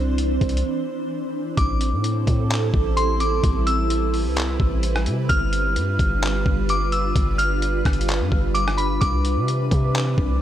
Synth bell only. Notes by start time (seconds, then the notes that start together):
1.57 D6
2.97 C6
3.20 D6
3.67 E6
5.29 F6
6.70 D6
6.92 E6
7.38 F6
8.54 D6
8.78 B5
9.01 D6